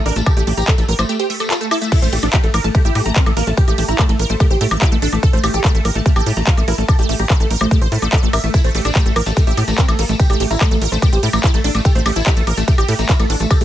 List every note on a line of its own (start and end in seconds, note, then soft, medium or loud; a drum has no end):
0.06 0.12 A1 loud
0.06 0.12 D4 medium
0.06 0.16 A#4 loud
0.06 open hi-hat loud
0.16 0.22 A1 loud
0.16 0.23 A3 medium
0.16 0.23 A5 medium
0.16 closed hi-hat medium
0.16 tambourine medium
0.26 0.34 G4 medium
0.26 0.33 A4 loud
0.26 kick loud
0.26 closed hi-hat medium
0.26 tambourine medium
0.26 high woodblock medium
0.37 0.43 A1 medium
0.37 0.43 A3 medium
0.37 0.46 G4 loud
0.37 closed hi-hat medium
0.37 tambourine soft
0.47 0.53 A1 loud
0.47 0.54 A3 medium
0.47 0.57 G4 medium
0.47 open hi-hat loud
0.57 0.63 A1 medium
0.57 0.64 G4 loud
0.57 0.65 A#5 loud
0.57 closed hi-hat medium
0.57 tambourine medium
0.68 0.74 A3 medium
0.68 0.75 A4 loud
0.68 kick loud
0.68 clap loud
0.68 closed hi-hat medium
0.68 tambourine medium
0.68 high woodblock soft
0.78 0.84 A1 medium
0.78 0.85 A3 medium
0.78 0.85 A4 medium
0.78 closed hi-hat medium
0.78 tambourine soft
0.88 0.94 A1 loud
0.88 0.98 A#4 loud
0.88 open hi-hat loud
0.99 1.05 A1 medium
0.99 1.05 A3 medium
0.99 1.06 C5 medium
0.99 closed hi-hat medium
0.99 tambourine medium
0.99 high woodblock medium
1.09 1.16 A3 medium
1.09 1.16 G4 medium
1.09 closed hi-hat medium
1.09 tambourine medium
1.19 1.26 G4 loud
1.19 1.27 C5 medium
1.19 closed hi-hat medium
1.19 tambourine soft
1.30 1.36 A3 medium
1.30 1.37 E5 medium
1.30 open hi-hat medium
1.40 1.47 A3 medium
1.40 1.45 A4 medium
1.40 closed hi-hat medium
1.40 tambourine medium
1.40 high woodblock soft
1.50 1.57 F4 medium
1.50 1.55 A5 loud
1.50 clap loud
1.50 closed hi-hat medium
1.50 tambourine medium
1.61 1.67 A3 medium
1.61 1.68 A5 loud
1.61 closed hi-hat medium
1.61 tambourine soft
1.71 1.78 E4 medium
1.71 1.78 A4 loud
1.71 open hi-hat loud
1.71 high woodblock medium
1.82 1.88 A3 medium
1.82 1.91 E5 loud
1.82 closed hi-hat medium
1.82 tambourine medium
1.92 1.98 E4 loud
1.92 2.02 A4 medium
1.92 kick loud
1.92 closed hi-hat medium
1.92 crash loud
1.92 ride medium
2.02 2.08 A1 medium
2.02 2.09 A3 medium
2.02 2.07 C5 loud
2.02 closed hi-hat medium
2.13 2.18 A1 loud
2.13 2.19 A3 medium
2.13 2.22 G4 medium
2.13 open hi-hat loud
2.13 ride medium
2.23 2.29 A1 medium
2.23 2.29 D4 loud
2.23 2.30 A4 medium
2.23 closed hi-hat medium
2.23 high woodblock soft
2.33 2.40 A3 medium
2.33 2.41 G4 medium
2.33 kick loud
2.33 clap loud
2.33 closed hi-hat medium
2.33 ride medium
2.44 2.49 A1 medium
2.44 2.50 A3 medium
2.44 2.51 A4 medium
2.44 closed hi-hat medium
2.54 2.60 A1 loud
2.54 2.64 A#4 loud
2.54 open hi-hat loud
2.54 ride medium
2.54 high woodblock medium
2.64 2.70 A1 loud
2.64 2.71 A3 medium
2.64 2.69 A5 medium
2.64 closed hi-hat medium
2.75 2.81 A3 medium
2.75 2.79 G4 medium
2.75 kick loud
2.75 closed hi-hat medium
2.75 ride medium
2.85 2.91 A1 medium
2.85 2.92 E4 loud
2.85 2.94 G4 loud
2.85 closed hi-hat medium
2.95 3.01 A2 loud
2.95 3.02 A3 medium
2.95 3.05 G4 medium
2.95 open hi-hat loud
2.95 ride medium
2.95 high woodblock soft
3.06 3.11 A1 medium
3.06 3.12 A3 medium
3.06 3.13 A#5 loud
3.06 closed hi-hat medium
3.16 3.23 C4 medium
3.16 3.23 A#4 medium
3.16 kick loud
3.16 clap loud
3.16 closed hi-hat medium
3.16 ride medium
3.26 3.32 A1 medium
3.26 3.33 A3 medium
3.26 3.34 A4 medium
3.26 closed hi-hat medium
3.26 high woodblock medium
3.37 3.43 A1 loud
3.37 3.43 A#3 medium
3.37 3.47 A#4 loud
3.37 open hi-hat loud
3.37 ride medium
3.47 3.53 A1 loud
3.47 3.54 A3 medium
3.47 3.54 A5 medium
3.47 closed hi-hat medium
3.57 3.65 G4 medium
3.57 3.64 G4 loud
3.57 kick loud
3.57 closed hi-hat medium
3.57 ride medium
3.68 3.74 A1 medium
3.68 3.74 A3 medium
3.68 3.77 G4 loud
3.68 closed hi-hat medium
3.68 high woodblock soft
3.78 3.84 A1 loud
3.78 3.85 A3 medium
3.78 3.88 G4 medium
3.78 open hi-hat loud
3.78 ride medium
3.88 3.94 A1 medium
3.88 3.95 E4 medium
3.88 3.96 A#5 loud
3.88 closed hi-hat medium
3.99 4.05 A3 medium
3.99 4.06 A4 loud
3.99 kick loud
3.99 clap loud
3.99 closed hi-hat medium
3.99 ride medium
3.99 high woodblock medium
4.09 4.15 A1 medium
4.09 4.16 A3 medium
4.09 4.16 A4 medium
4.09 closed hi-hat medium
4.19 4.25 A1 loud
4.19 4.29 A#4 loud
4.19 open hi-hat loud
4.19 ride medium
4.30 4.36 A1 medium
4.30 4.36 A3 medium
4.30 4.37 C5 medium
4.30 closed hi-hat medium
4.40 4.47 A3 medium
4.40 4.47 G4 medium
4.40 kick loud
4.40 closed hi-hat medium
4.40 ride medium
4.40 high woodblock soft
4.50 4.56 A1 medium
4.50 4.57 G4 loud
4.50 4.58 C5 medium
4.50 closed hi-hat medium
4.61 4.67 A2 loud
4.61 4.67 A3 medium
4.61 4.71 G4 medium
4.61 open hi-hat loud
4.61 ride medium
4.71 4.77 A1 medium
4.71 4.78 A3 medium
4.71 4.78 A#5 loud
4.71 closed hi-hat medium
4.71 high woodblock medium
4.82 4.88 E4 medium
4.82 4.89 G4 loud
4.82 kick loud
4.82 clap loud
4.82 closed hi-hat medium
4.82 ride medium
4.92 4.98 A1 medium
4.92 4.98 A3 medium
4.92 4.99 A4 medium
4.92 closed hi-hat medium
5.02 5.08 A1 loud
5.02 5.09 D4 medium
5.02 5.09 A4 medium
5.02 open hi-hat loud
5.02 ride medium
5.13 5.18 A1 medium
5.13 5.19 A3 medium
5.13 5.20 A5 medium
5.13 closed hi-hat medium
5.13 high woodblock soft
5.23 5.29 A4 loud
5.23 5.33 A4 medium
5.23 kick loud
5.23 closed hi-hat medium
5.23 ride medium
5.33 5.39 A1 medium
5.33 5.40 A3 medium
5.33 5.38 C5 loud
5.33 closed hi-hat medium
5.44 5.49 A1 loud
5.44 5.50 A3 medium
5.44 5.53 G4 medium
5.44 open hi-hat loud
5.44 ride medium
5.44 high woodblock medium
5.54 5.60 A1 medium
5.54 5.61 G4 loud
5.54 5.61 A4 medium
5.54 closed hi-hat medium
5.64 5.71 A3 medium
5.64 5.72 G4 loud
5.64 kick loud
5.64 clap loud
5.64 closed hi-hat medium
5.64 ride medium
5.75 5.80 A1 medium
5.75 5.81 A3 medium
5.75 5.82 A4 medium
5.75 closed hi-hat medium
5.85 5.91 A1 loud
5.85 5.95 A#4 loud
5.85 open hi-hat loud
5.85 ride medium
5.85 high woodblock soft
5.95 6.01 A1 medium
5.95 6.02 A3 medium
5.95 6.00 A5 medium
5.95 closed hi-hat medium
6.06 6.12 A3 medium
6.06 6.10 G4 medium
6.06 kick loud
6.06 closed hi-hat medium
6.06 ride medium
6.16 6.22 A1 medium
6.16 6.25 G4 loud
6.16 6.23 A4 loud
6.16 closed hi-hat medium
6.16 high woodblock medium
6.26 6.32 A2 loud
6.26 6.33 A3 medium
6.26 6.36 G4 medium
6.26 open hi-hat loud
6.26 ride medium
6.37 6.43 A1 medium
6.37 6.43 A3 medium
6.37 6.44 A#5 loud
6.37 closed hi-hat medium
6.47 6.54 F4 medium
6.47 6.54 A#4 medium
6.47 kick loud
6.47 clap loud
6.47 closed hi-hat medium
6.47 ride medium
6.57 6.63 A1 medium
6.57 6.64 A3 medium
6.57 6.65 A4 medium
6.57 closed hi-hat medium
6.57 high woodblock soft
6.68 6.74 A1 loud
6.68 6.74 E4 medium
6.68 6.78 A#4 loud
6.68 open hi-hat loud
6.68 ride medium
6.78 6.84 A1 loud
6.78 6.85 A3 medium
6.78 6.85 A5 medium
6.78 closed hi-hat medium
6.88 6.96 G4 medium
6.88 6.95 A4 loud
6.88 kick loud
6.88 closed hi-hat medium
6.88 ride medium
6.88 high woodblock medium
6.99 7.05 A1 medium
6.99 7.05 A3 medium
6.99 7.08 G4 loud
6.99 closed hi-hat medium
7.09 7.15 A1 loud
7.09 7.16 A3 medium
7.09 7.19 G4 medium
7.09 open hi-hat loud
7.09 ride medium
7.19 7.25 A1 medium
7.19 7.26 G4 loud
7.19 7.27 A#5 loud
7.19 closed hi-hat medium
7.30 7.36 A3 medium
7.30 7.37 A4 loud
7.30 kick loud
7.30 clap loud
7.30 closed hi-hat medium
7.30 ride medium
7.30 high woodblock soft
7.40 7.46 A1 medium
7.40 7.47 A3 medium
7.40 7.47 A4 medium
7.40 closed hi-hat medium
7.51 7.56 A1 loud
7.51 7.60 A#4 loud
7.51 open hi-hat loud
7.51 ride medium
7.61 7.67 A1 medium
7.61 7.67 A3 medium
7.61 7.68 C5 medium
7.61 closed hi-hat medium
7.61 high woodblock medium
7.71 7.78 A3 medium
7.71 7.78 G4 medium
7.71 kick loud
7.71 closed hi-hat medium
7.71 ride medium
7.82 7.87 A1 medium
7.82 7.89 C5 medium
7.82 7.88 C5 medium
7.82 closed hi-hat medium
7.92 7.98 A2 loud
7.92 7.99 A3 medium
7.92 7.99 A5 medium
7.92 open hi-hat loud
7.92 ride medium
8.02 8.08 A1 medium
8.02 8.09 A3 medium
8.02 8.11 A4 medium
8.02 closed hi-hat medium
8.02 high woodblock soft
8.13 8.20 A4 loud
8.13 8.19 D5 medium
8.13 kick loud
8.13 clap loud
8.13 closed hi-hat medium
8.13 ride medium
8.23 8.29 A1 medium
8.23 8.30 A3 medium
8.23 8.30 A4 medium
8.23 closed hi-hat medium
8.33 8.39 A1 loud
8.33 8.38 A#4 loud
8.33 8.40 E5 medium
8.33 open hi-hat loud
8.33 ride medium
8.33 high woodblock medium
8.44 8.49 A1 medium
8.44 8.50 A3 medium
8.44 8.48 E5 loud
8.44 closed hi-hat medium
8.54 8.61 E4 loud
8.54 8.64 A4 medium
8.54 kick loud
8.54 closed hi-hat medium
8.54 ride medium
8.54 tambourine medium
8.64 8.70 A1 medium
8.64 8.71 A3 medium
8.64 8.69 C5 loud
8.64 closed hi-hat medium
8.64 tambourine soft
8.75 8.80 A1 loud
8.75 8.81 A3 medium
8.75 8.84 G4 medium
8.75 open hi-hat loud
8.75 ride medium
8.85 8.91 A1 loud
8.85 8.92 D4 medium
8.85 8.92 A4 medium
8.85 closed hi-hat medium
8.85 tambourine medium
8.85 high woodblock soft
8.95 9.02 A3 medium
8.95 9.03 G4 loud
8.95 kick loud
8.95 clap loud
8.95 closed hi-hat medium
8.95 ride medium
9.05 9.12 A1 medium
9.05 9.12 A3 medium
9.05 9.13 A4 medium
9.05 closed hi-hat medium
9.05 tambourine soft
9.16 9.22 A1 loud
9.16 9.26 A#4 loud
9.16 open hi-hat loud
9.16 ride medium
9.16 high woodblock medium
9.26 9.32 A1 loud
9.26 9.33 A3 medium
9.26 9.31 A5 medium
9.26 closed hi-hat medium
9.26 tambourine medium
9.36 9.43 A3 medium
9.36 9.41 G4 medium
9.36 kick loud
9.36 closed hi-hat medium
9.36 ride medium
9.36 tambourine medium
9.47 9.53 A1 medium
9.47 9.54 E4 loud
9.47 9.56 G4 loud
9.47 closed hi-hat medium
9.47 tambourine soft
9.57 9.63 A2 loud
9.57 9.64 A3 medium
9.57 9.67 G4 medium
9.57 open hi-hat loud
9.57 ride medium
9.57 high woodblock soft
9.68 9.74 A1 medium
9.68 9.74 A3 medium
9.68 9.75 A#5 loud
9.68 closed hi-hat medium
9.68 tambourine medium
9.78 9.85 C4 medium
9.78 9.85 A#4 medium
9.78 kick loud
9.78 clap loud
9.78 closed hi-hat medium
9.78 ride medium
9.88 9.94 A1 medium
9.88 9.95 A3 medium
9.88 9.96 A4 medium
9.88 closed hi-hat medium
9.88 tambourine soft
9.88 high woodblock medium
9.99 10.05 A1 loud
9.99 10.05 A#3 medium
9.99 10.03 A4 medium
9.99 open hi-hat loud
9.99 ride medium
10.09 10.15 A1 medium
10.09 10.16 A3 medium
10.09 10.16 A5 medium
10.09 closed hi-hat medium
10.09 tambourine medium
10.19 10.27 G4 medium
10.19 10.26 G4 loud
10.19 kick loud
10.19 closed hi-hat medium
10.19 ride medium
10.19 tambourine medium
10.30 10.36 A1 medium
10.30 10.36 A3 medium
10.30 10.39 G4 loud
10.30 closed hi-hat medium
10.30 tambourine soft
10.30 high woodblock soft
10.40 10.46 A1 loud
10.40 10.47 A3 medium
10.40 10.50 G4 medium
10.40 open hi-hat loud
10.40 ride medium
10.51 10.56 A1 loud
10.51 10.57 E4 medium
10.51 10.58 A#5 loud
10.51 closed hi-hat medium
10.51 tambourine medium
10.61 10.67 A3 medium
10.61 10.68 A4 loud
10.61 kick loud
10.61 clap loud
10.61 closed hi-hat medium
10.61 ride medium
10.61 tambourine medium
10.61 high woodblock medium
10.71 10.77 A1 medium
10.71 10.78 A3 medium
10.71 10.78 A4 medium
10.71 closed hi-hat medium
10.71 tambourine soft
10.82 10.87 A1 loud
10.82 10.91 A#4 loud
10.82 open hi-hat loud
10.82 ride medium
10.92 10.98 A1 medium
10.92 10.98 A3 medium
10.92 10.99 C5 medium
10.92 closed hi-hat medium
10.92 tambourine medium
11.02 11.09 A3 medium
11.02 11.09 G4 medium
11.02 kick loud
11.02 closed hi-hat medium
11.02 ride medium
11.02 tambourine medium
11.02 high woodblock soft
11.13 11.18 A1 medium
11.13 11.19 G4 loud
11.13 11.20 C5 medium
11.13 closed hi-hat medium
11.13 tambourine soft
11.23 11.29 A2 loud
11.23 11.30 A3 medium
11.23 11.33 G4 medium
11.23 open hi-hat loud
11.23 ride medium
11.33 11.39 A1 medium
11.33 11.40 A3 medium
11.33 11.40 A#5 loud
11.33 closed hi-hat medium
11.33 tambourine medium
11.33 high woodblock medium
11.44 11.50 E4 medium
11.44 11.51 G4 loud
11.44 kick loud
11.44 clap loud
11.44 closed hi-hat medium
11.44 ride medium
11.44 tambourine medium
11.54 11.60 A1 medium
11.54 11.61 A3 medium
11.54 11.61 A4 medium
11.54 closed hi-hat medium
11.54 tambourine soft
11.64 11.70 A1 loud
11.64 11.71 D4 medium
11.64 11.72 A4 medium
11.64 open hi-hat loud
11.64 ride medium
11.75 11.80 A1 loud
11.75 11.81 A3 medium
11.75 11.82 A5 medium
11.75 closed hi-hat medium
11.75 tambourine medium
11.75 high woodblock soft
11.85 11.92 G4 loud
11.85 11.95 A4 medium
11.85 kick loud
11.85 closed hi-hat medium
11.85 ride medium
11.85 tambourine medium
11.95 12.01 A1 medium
11.95 12.02 A3 medium
11.95 12.00 C5 loud
11.95 closed hi-hat medium
11.95 tambourine soft
12.06 12.12 A1 loud
12.06 12.12 A3 medium
12.06 12.16 G4 medium
12.06 open hi-hat loud
12.06 ride medium
12.06 high woodblock medium
12.16 12.22 A1 medium
12.16 12.23 E4 medium
12.16 12.23 A4 medium
12.16 closed hi-hat medium
12.16 tambourine medium
12.26 12.33 A3 medium
12.26 12.34 G4 loud
12.26 kick loud
12.26 clap loud
12.26 closed hi-hat medium
12.26 ride medium
12.37 12.43 A1 medium
12.37 12.43 A3 medium
12.37 12.44 A4 medium
12.37 closed hi-hat medium
12.37 tambourine soft
12.47 12.53 A1 loud
12.47 12.57 A#4 loud
12.47 open hi-hat loud
12.47 ride medium
12.47 high woodblock soft
12.57 12.63 A1 medium
12.57 12.64 A3 medium
12.57 12.62 A5 medium
12.57 closed hi-hat medium
12.57 tambourine medium
12.68 12.74 A3 medium
12.68 12.72 G4 medium
12.68 kick loud
12.68 closed hi-hat medium
12.68 ride medium
12.68 tambourine medium
12.78 12.84 A1 medium
12.78 12.85 G4 loud
12.78 12.87 G4 loud
12.78 closed hi-hat medium
12.78 tambourine soft
12.78 high woodblock medium
12.88 12.94 A2 loud
12.88 12.95 A3 medium
12.88 12.98 G4 medium
12.88 open hi-hat loud
12.88 ride medium
12.99 13.05 A1 medium
12.99 13.05 A3 medium
12.99 13.06 A#5 loud
12.99 closed hi-hat medium
12.99 tambourine medium
13.09 13.16 E4 medium
13.09 13.16 A#4 medium
13.09 kick loud
13.09 clap loud
13.09 closed hi-hat medium
13.09 ride medium
13.09 tambourine medium
13.19 13.25 A1 medium
13.19 13.26 A3 medium
13.19 13.27 A4 medium
13.19 closed hi-hat medium
13.19 tambourine soft
13.19 high woodblock soft
13.30 13.36 A1 loud
13.30 13.36 D4 medium
13.30 13.34 A4 medium
13.30 open hi-hat loud
13.30 ride medium
13.40 13.46 A1 loud
13.40 13.47 A3 medium
13.40 13.47 A5 medium
13.40 closed hi-hat medium
13.40 tambourine medium
13.50 13.58 G4 medium
13.50 13.57 A4 loud
13.50 kick loud
13.50 closed hi-hat medium
13.50 ride medium
13.50 tambourine medium
13.50 high woodblock medium
13.61 13.64 A1 medium
13.61 13.64 A3 medium
13.61 13.64 G4 loud
13.61 closed hi-hat medium
13.61 tambourine soft